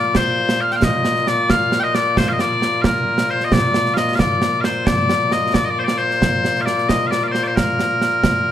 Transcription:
0.00 8.52 A#2 medium
0.00 8.52 A#3 medium
0.00 8.52 F4 medium
0.00 0.16 D5 medium
0.15 0.61 C5 medium
0.15 concert bass drum medium
0.15 snare medium
0.49 snare medium
0.61 0.72 F5 medium
0.71 0.76 G5 medium
0.71 snare soft
0.76 0.83 F5 medium
0.82 1.28 D#5 medium
0.82 concert bass drum medium
0.82 snare medium
1.05 snare medium
1.16 snare soft
1.27 1.50 D5 loud
1.27 snare medium
1.50 1.80 F5 loud
1.50 concert bass drum soft
1.50 snare medium
1.72 snare medium
1.80 1.95 D#5 loud
1.80 1.83 G5 loud
1.95 2.18 D5 loud
1.95 snare medium
2.17 2.29 C5 loud
2.17 concert bass drum medium
2.17 snare loud
2.29 2.33 F5 medium
2.33 2.40 D#5 medium
2.39 2.82 D5 loud
2.39 snare medium
2.62 snare medium
2.82 3.30 A#4 medium
2.82 2.85 F5 medium
2.82 concert bass drum medium
2.82 snare loud
3.18 snare medium
3.30 3.45 C5 medium
3.40 snare soft
3.45 3.53 D#5 medium
3.52 3.94 D5 loud
3.52 concert bass drum medium
3.52 snare medium
3.74 snare medium
3.86 snare soft
3.94 4.15 D#5 medium
3.94 3.97 F5 medium
3.94 snare medium
4.08 snare soft
4.15 4.20 F5 medium
4.15 concert bass drum medium
4.15 snare loud
4.20 4.61 D5 medium
4.42 snare medium
4.61 4.87 C5 medium
4.61 4.65 F5 medium
4.61 snare medium
4.87 5.32 D5 loud
4.87 concert bass drum medium
4.87 snare loud
5.09 snare medium
5.32 5.54 D#5 medium
5.32 snare medium
5.54 5.64 D5 medium
5.54 concert bass drum medium
5.54 snare loud
5.64 5.70 D#5 medium
5.70 5.79 D5 medium
5.79 5.84 C5 medium
5.84 5.98 D5 medium
5.84 snare medium
5.98 6.61 C5 medium
6.11 snare soft
6.22 concert bass drum medium
6.22 snare medium
6.45 snare medium
6.56 snare soft
6.61 6.65 F5 medium
6.65 6.89 D5 medium
6.65 snare medium
6.78 snare soft
6.89 7.07 D#5 medium
6.89 concert bass drum soft
6.89 snare medium
7.07 7.23 D5 medium
7.07 7.11 F5 medium
7.12 snare medium
7.23 7.28 F5 medium
7.28 7.32 D5 medium
7.32 7.44 C5 medium
7.32 snare medium
7.44 7.55 C5 medium
7.44 7.47 D5 medium
7.55 8.52 A#4 medium
7.55 concert bass drum medium
7.55 snare medium
7.79 snare medium
8.02 snare medium
8.24 concert bass drum medium
8.24 snare loud

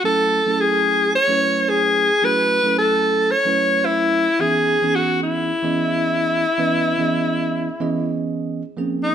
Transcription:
0.04 0.39 F#3 medium
0.04 0.40 A3 medium
0.04 0.40 C#4 medium
0.04 0.40 E4 medium
0.04 0.62 A4 loud
0.04 0.40 A4 medium
0.46 1.15 F#3 medium
0.46 1.15 A3 medium
0.46 1.15 C#4 medium
0.46 1.16 E4 medium
0.46 1.16 G#4 medium
0.60 1.15 G#4 medium
1.15 1.71 C#5 loud
1.27 2.08 F#3 medium
1.27 2.09 A3 medium
1.27 2.09 C#4 medium
1.27 2.09 E4 medium
1.27 2.10 B4 medium
1.70 2.26 G#4 medium
2.22 2.57 F#3 medium
2.22 2.58 A3 medium
2.22 2.58 C#4 medium
2.22 2.58 E4 medium
2.22 2.58 F#4 medium
2.22 2.78 B4 loud
2.63 3.32 F#3 medium
2.63 3.32 A3 medium
2.63 3.33 C#4 medium
2.63 3.33 E4 medium
2.63 3.33 A4 medium
2.78 3.33 A4 medium
3.31 3.87 C#5 medium
3.45 4.26 F#3 medium
3.45 4.26 A3 medium
3.45 4.27 C#4 medium
3.45 4.27 E4 medium
3.45 4.27 B4 medium
3.85 4.42 E4 medium
4.39 4.75 E3 medium
4.39 4.75 B3 medium
4.39 4.76 C#4 medium
4.39 4.76 D#4 medium
4.39 4.97 G#4 medium
4.39 4.76 G#4 medium
4.82 5.50 E3 medium
4.82 5.51 B3 medium
4.82 5.51 C#4 medium
4.82 5.51 D#4 medium
4.82 5.51 G#4 medium
4.95 5.22 F#4 medium
5.23 8.18 E4 medium
5.63 6.44 E3 medium
5.63 6.44 B3 medium
5.63 6.44 C#4 medium
5.63 6.45 G#4 medium
5.63 6.44 D#5 medium
6.58 6.93 E3 medium
6.58 6.93 B3 medium
6.58 6.93 C#4 medium
6.58 6.94 B4 medium
6.58 6.93 D#5 medium
6.98 7.67 E3 medium
6.98 7.68 B3 medium
6.98 7.68 C#4 medium
6.98 7.68 G#4 medium
6.98 7.68 D#5 medium
7.80 8.61 E3 medium
7.80 8.61 B3 medium
7.80 8.61 C#4 medium
7.80 8.62 G#4 medium
7.80 8.62 D#5 medium
8.77 9.15 F3 medium
8.77 9.15 A#3 medium
8.77 9.15 C4 medium
8.77 9.15 C#4 medium
8.77 9.15 G#4 medium
9.03 9.15 D#4 medium

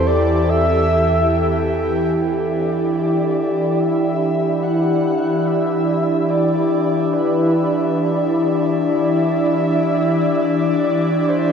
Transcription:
0.00 2.09 E2 medium
0.00 2.22 E3 medium
0.00 11.52 E3 medium
0.00 2.15 C4 medium
0.00 11.52 E4 medium
0.00 11.52 G4 medium
0.00 3.85 A4 medium
0.07 0.51 D5 medium
0.49 1.73 E5 loud
2.15 3.82 D5 loud
2.53 11.52 D4 medium
2.94 11.52 D5 medium
3.80 4.64 E5 loud
4.63 5.48 F#5 loud
5.46 6.31 E5 loud
6.30 7.14 D5 loud
7.13 8.39 B4 medium
8.80 10.46 E5 medium
10.45 11.30 D5 loud
11.28 11.52 C5 loud

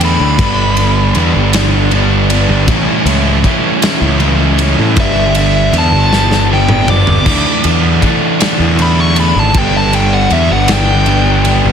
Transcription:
0.00 0.16 E2 medium
0.00 0.36 D3 medium
0.00 0.38 E3 medium
0.00 0.41 A3 medium
0.00 0.37 D4 medium
0.00 ride medium
0.05 1.52 B5 loud
0.20 0.38 D2 medium
0.39 1.11 G1 loud
0.39 1.15 G2 medium
0.39 1.14 D3 loud
0.39 0.81 G3 medium
0.39 0.79 B3 loud
0.39 kick loud
0.39 ride loud
0.43 0.77 D4 loud
0.77 1.17 B3 medium
0.77 1.18 D4 medium
0.77 ride medium
0.81 1.17 G3 medium
1.15 1.34 E2 medium
1.15 1.90 D3 loud
1.15 1.57 G3 medium
1.15 1.54 B3 medium
1.15 ride medium
1.19 1.53 D4 medium
1.35 2.45 G1 medium
1.53 1.93 B3 medium
1.53 1.94 D4 medium
1.53 snare loud
1.53 ride loud
1.57 1.92 G3 medium
1.91 2.66 D3 medium
1.91 2.33 G3 medium
1.91 2.31 B3 medium
1.91 2.29 D4 medium
1.91 ride medium
2.30 2.70 G3 medium
2.30 2.67 B3 medium
2.30 2.66 D4 medium
2.30 ride medium
2.49 2.67 G1 loud
2.67 2.86 A1 loud
2.67 3.44 A2 loud
2.67 3.44 E3 loud
2.67 3.07 G3 loud
2.67 3.10 A3 loud
2.67 3.08 C#4 loud
2.67 kick loud
2.67 ride loud
2.72 3.05 E4 loud
3.05 3.42 C#2 loud
3.05 3.44 G3 medium
3.05 3.47 C#4 medium
3.05 3.48 E4 medium
3.05 ride medium
3.11 3.46 A3 medium
3.44 4.20 E3 medium
3.44 3.82 G3 medium
3.44 3.85 A3 loud
3.44 3.83 C#4 medium
3.44 kick medium
3.44 ride medium
3.49 3.81 E4 medium
3.82 4.19 G3 medium
3.82 4.22 A3 medium
3.82 4.22 C#4 medium
3.82 4.23 E4 medium
3.82 snare loud
3.82 ride loud
4.01 4.74 C#2 medium
4.20 4.95 E3 medium
4.20 4.58 G3 medium
4.20 4.62 A3 medium
4.20 4.60 C#4 medium
4.20 ride medium
4.24 4.58 E4 medium
4.59 4.95 G3 medium
4.59 4.96 C#4 medium
4.59 4.95 E4 medium
4.59 ride medium
4.63 4.99 A3 medium
4.79 4.96 A2 medium
4.97 5.69 G1 loud
4.97 5.73 G2 loud
4.97 5.73 D3 medium
4.97 5.38 G3 loud
4.97 5.37 B3 loud
4.97 5.36 E5 medium
4.97 kick loud
4.97 ride loud
5.01 5.35 D4 loud
5.35 5.75 B3 medium
5.35 5.77 D4 medium
5.35 5.73 E5 medium
5.35 ride loud
5.40 5.74 G3 medium
5.73 5.91 E2 medium
5.73 6.48 D3 medium
5.73 6.14 G3 medium
5.73 6.12 B3 medium
5.73 ride medium
5.77 6.11 D4 medium
5.77 6.50 A5 medium
5.92 7.03 G1 medium
6.12 6.50 G3 medium
6.12 6.51 B3 medium
6.12 6.53 D4 medium
6.12 snare medium
6.31 snare medium
6.50 7.23 D3 medium
6.50 6.90 G3 medium
6.50 6.89 B3 medium
6.50 6.87 D4 medium
6.54 6.89 G5 medium
6.69 mid tom medium
6.88 7.25 G3 medium
6.88 7.25 B3 medium
6.88 7.29 D4 medium
6.88 8.37 D6 medium
6.88 mid tom loud
7.07 7.25 G1 medium
7.07 floor tom loud
7.26 7.44 D2 medium
7.26 8.01 D3 loud
7.26 7.66 E3 loud
7.26 7.65 A3 loud
7.26 7.63 D4 loud
7.26 kick loud
7.26 crash loud
7.64 8.00 E2 loud
7.64 8.03 E3 medium
7.64 8.04 A3 medium
7.64 8.06 D4 medium
7.64 ride medium
8.02 8.77 D3 medium
8.02 8.43 E3 medium
8.02 8.42 A3 medium
8.02 8.39 D4 medium
8.02 kick medium
8.02 ride medium
8.40 8.79 E3 medium
8.40 8.81 A3 medium
8.40 8.81 D4 medium
8.40 snare loud
8.40 ride loud
8.60 9.32 E2 medium
8.78 9.52 D3 medium
8.78 9.19 E3 medium
8.78 9.18 A3 medium
8.78 9.15 D4 medium
8.78 9.00 B5 loud
8.78 ride medium
9.00 9.17 C#6 medium
9.16 9.54 E3 medium
9.16 9.57 A3 medium
9.16 9.52 D4 medium
9.16 9.39 B5 medium
9.16 ride medium
9.36 9.54 G#1 medium
9.36 9.58 A5 medium
9.54 10.27 G1 loud
9.54 10.30 G2 medium
9.54 10.30 D3 loud
9.54 9.96 G3 loud
9.54 9.94 B3 loud
9.54 9.91 D4 loud
9.54 kick loud
9.54 ride loud
9.58 9.75 G5 medium
9.77 9.94 A5 loud
9.93 10.32 G3 medium
9.93 10.32 B3 medium
9.93 10.34 D4 medium
9.93 10.12 G5 loud
9.93 ride medium
10.14 10.33 F#5 loud
10.30 10.49 E2 medium
10.30 11.06 D3 medium
10.30 10.71 G3 medium
10.30 10.70 B3 medium
10.30 10.50 E5 loud
10.30 ride medium
10.35 10.68 D4 medium
10.50 11.60 G1 medium
10.50 10.72 F#5 loud
10.68 11.08 B3 medium
10.68 11.09 D4 medium
10.68 11.72 G5 loud
10.68 snare loud
10.68 ride loud
10.73 11.07 G3 medium
11.06 11.72 D3 medium
11.06 11.47 G3 medium
11.06 11.46 B3 medium
11.06 ride medium
11.11 11.44 D4 medium
11.45 11.72 G3 medium
11.45 11.72 B3 medium
11.45 11.72 D4 medium
11.45 ride medium
11.65 11.72 G1 medium

